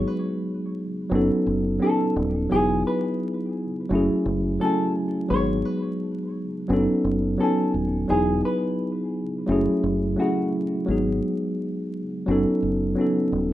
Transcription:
Already playing: F#3 G#3 B3 D#4 G#4
0.07 B4
1.10 F#1 F#3 B3 C#4
1.14 D#4 A4
1.34 muted fingered electric bass stroke
1.46 F#1
1.79 F#3 B3 C#4 A4
1.83 D#4 A4
2.16 D#1
2.50 E1 F#3 B3 D#4 G#4
2.54 E4 G#4
2.87 B4
3.90 F#1 F#3 A3 C#4
3.94 E4 G#4
4.13 muted fingered electric bass stroke
4.26 F#1
4.60 F#3 A3 C#4 E4 A4
4.66 G#5
5.29 G#1 F#3 G#3 B3 D#4 C#5
5.34 G#4
5.65 B4
6.68 F#1 F#3 B3 C#4 D4
6.73 A4
6.78 D#4
6.92 muted fingered electric bass stroke
7.04 F#1
7.38 F#3 B3 C#4 A4
7.42 D#4 G#5
7.74 D#1
8.08 E1 F#3 B3 D#4 E4 G#4
8.13 G#4
8.45 B4
9.47 F#1 F#3 A3 C#4 E4
9.52 G#4
9.71 muted fingered electric bass stroke
9.83 F#1
10.16 F#3 A3 C#4 F#4
10.20 E4 G#4
10.86 G#1 F#3 G#3 B3
10.90 D#4 G#4
12.26 F#1 F#3 B3 C#4
12.30 D#4 A4
12.50 muted fingered electric bass stroke
12.62 F#1
12.95 F#3 B3 C#4
13.00 D#4 A4
13.32 D#1

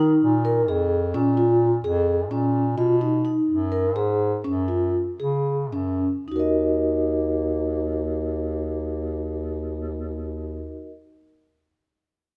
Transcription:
Already playing: D#3 D#4
0.23 A#2
0.45 A#4
0.68 F2 G#4
1.14 A#2 C#4
1.37 F4
1.84 F2 G#4
2.30 A#2 C#4
2.77 B2 F4
3.01 D#4
3.25 D#4
3.48 F#2
3.72 A#4
3.95 G#2 G#4
4.44 F#2 C#4
4.68 F4
5.20 C#3 G#4
5.72 F#2 C#4
6.27 D#2 D#4
6.32 F#4
6.36 A#4 D#5

